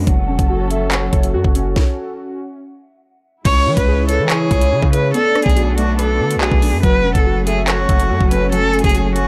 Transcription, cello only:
0, 0, Header, 1, 2, 480
1, 0, Start_track
1, 0, Tempo, 422535
1, 82, Time_signature, 4, 2, 24, 8
1, 10539, End_track
2, 0, Start_track
2, 0, Title_t, "Cello"
2, 0, Program_c, 0, 42
2, 3923, Note_on_c, 0, 73, 114
2, 4261, Note_off_c, 0, 73, 0
2, 4283, Note_on_c, 0, 71, 84
2, 4621, Note_off_c, 0, 71, 0
2, 4643, Note_on_c, 0, 69, 93
2, 4854, Note_off_c, 0, 69, 0
2, 4884, Note_on_c, 0, 68, 86
2, 5560, Note_off_c, 0, 68, 0
2, 5604, Note_on_c, 0, 71, 85
2, 5815, Note_off_c, 0, 71, 0
2, 5842, Note_on_c, 0, 69, 111
2, 6180, Note_off_c, 0, 69, 0
2, 6204, Note_on_c, 0, 68, 80
2, 6541, Note_off_c, 0, 68, 0
2, 6562, Note_on_c, 0, 66, 83
2, 6774, Note_off_c, 0, 66, 0
2, 6803, Note_on_c, 0, 69, 88
2, 7254, Note_off_c, 0, 69, 0
2, 7283, Note_on_c, 0, 68, 83
2, 7733, Note_off_c, 0, 68, 0
2, 7763, Note_on_c, 0, 71, 117
2, 8101, Note_off_c, 0, 71, 0
2, 8124, Note_on_c, 0, 69, 82
2, 8462, Note_off_c, 0, 69, 0
2, 8485, Note_on_c, 0, 68, 85
2, 8696, Note_off_c, 0, 68, 0
2, 8725, Note_on_c, 0, 66, 90
2, 9400, Note_off_c, 0, 66, 0
2, 9443, Note_on_c, 0, 71, 86
2, 9655, Note_off_c, 0, 71, 0
2, 9682, Note_on_c, 0, 69, 114
2, 10020, Note_off_c, 0, 69, 0
2, 10043, Note_on_c, 0, 68, 77
2, 10381, Note_off_c, 0, 68, 0
2, 10403, Note_on_c, 0, 66, 91
2, 10539, Note_off_c, 0, 66, 0
2, 10539, End_track
0, 0, End_of_file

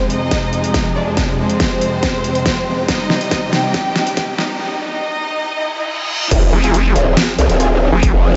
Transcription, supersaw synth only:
0, 0, Header, 1, 2, 480
1, 0, Start_track
1, 0, Key_signature, -4, "minor"
1, 0, Tempo, 428571
1, 1312, Time_signature, 4, 2, 24, 8
1, 9368, End_track
2, 0, Start_track
2, 0, Title_t, "Supersaw synth"
2, 0, Program_c, 0, 81
2, 0, Note_on_c, 0, 41, 85
2, 0, Note_on_c, 0, 48, 78
2, 0, Note_on_c, 0, 56, 94
2, 3193, Note_off_c, 0, 41, 0
2, 3193, Note_off_c, 0, 48, 0
2, 3193, Note_off_c, 0, 56, 0
2, 3231, Note_on_c, 0, 48, 84
2, 3231, Note_on_c, 0, 55, 78
2, 3231, Note_on_c, 0, 63, 96
2, 5132, Note_off_c, 0, 48, 0
2, 5132, Note_off_c, 0, 55, 0
2, 5132, Note_off_c, 0, 63, 0
2, 7071, Note_on_c, 0, 53, 86
2, 7071, Note_on_c, 0, 60, 77
2, 7071, Note_on_c, 0, 68, 96
2, 9368, Note_off_c, 0, 53, 0
2, 9368, Note_off_c, 0, 60, 0
2, 9368, Note_off_c, 0, 68, 0
2, 9368, End_track
0, 0, End_of_file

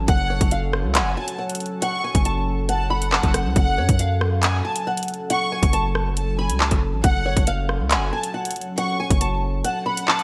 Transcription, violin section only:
0, 0, Header, 1, 2, 480
1, 0, Start_track
1, 0, Key_signature, 3, "minor"
1, 0, Tempo, 434783
1, 91, Time_signature, 4, 2, 24, 8
1, 11295, End_track
2, 0, Start_track
2, 0, Title_t, "Violin section"
2, 0, Program_c, 0, 48
2, 92, Note_on_c, 0, 78, 106
2, 543, Note_off_c, 0, 78, 0
2, 1050, Note_on_c, 0, 80, 82
2, 1279, Note_off_c, 0, 80, 0
2, 1289, Note_on_c, 0, 81, 88
2, 1518, Note_off_c, 0, 81, 0
2, 2012, Note_on_c, 0, 85, 101
2, 2463, Note_off_c, 0, 85, 0
2, 2975, Note_on_c, 0, 81, 89
2, 3201, Note_off_c, 0, 81, 0
2, 3213, Note_on_c, 0, 78, 86
2, 3889, Note_off_c, 0, 78, 0
2, 3929, Note_on_c, 0, 78, 116
2, 4381, Note_off_c, 0, 78, 0
2, 4892, Note_on_c, 0, 80, 91
2, 5120, Note_off_c, 0, 80, 0
2, 5133, Note_on_c, 0, 81, 85
2, 5360, Note_off_c, 0, 81, 0
2, 5852, Note_on_c, 0, 85, 121
2, 6303, Note_off_c, 0, 85, 0
2, 6810, Note_on_c, 0, 81, 81
2, 7038, Note_off_c, 0, 81, 0
2, 7054, Note_on_c, 0, 80, 78
2, 7280, Note_off_c, 0, 80, 0
2, 7772, Note_on_c, 0, 78, 105
2, 8223, Note_off_c, 0, 78, 0
2, 8732, Note_on_c, 0, 80, 81
2, 8959, Note_off_c, 0, 80, 0
2, 8970, Note_on_c, 0, 81, 85
2, 9199, Note_off_c, 0, 81, 0
2, 9692, Note_on_c, 0, 85, 102
2, 10143, Note_off_c, 0, 85, 0
2, 10655, Note_on_c, 0, 81, 89
2, 10881, Note_off_c, 0, 81, 0
2, 10893, Note_on_c, 0, 78, 88
2, 11295, Note_off_c, 0, 78, 0
2, 11295, End_track
0, 0, End_of_file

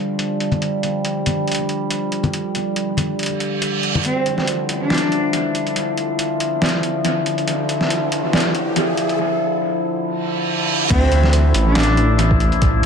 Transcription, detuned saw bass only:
0, 0, Header, 1, 2, 480
1, 0, Start_track
1, 0, Key_signature, -1, "minor"
1, 0, Tempo, 428571
1, 691, Time_signature, 4, 2, 24, 8
1, 14400, End_track
2, 0, Start_track
2, 0, Title_t, "Detuned saw bass"
2, 0, Program_c, 0, 39
2, 4530, Note_on_c, 0, 38, 95
2, 5234, Note_off_c, 0, 38, 0
2, 5252, Note_on_c, 0, 33, 91
2, 6674, Note_off_c, 0, 33, 0
2, 6690, Note_on_c, 0, 29, 96
2, 7393, Note_off_c, 0, 29, 0
2, 7413, Note_on_c, 0, 38, 99
2, 7875, Note_off_c, 0, 38, 0
2, 7892, Note_on_c, 0, 33, 95
2, 8355, Note_off_c, 0, 33, 0
2, 8372, Note_on_c, 0, 38, 95
2, 9074, Note_off_c, 0, 38, 0
2, 9093, Note_on_c, 0, 33, 97
2, 10292, Note_off_c, 0, 33, 0
2, 12213, Note_on_c, 0, 38, 98
2, 12915, Note_off_c, 0, 38, 0
2, 12930, Note_on_c, 0, 33, 95
2, 14353, Note_off_c, 0, 33, 0
2, 14400, End_track
0, 0, End_of_file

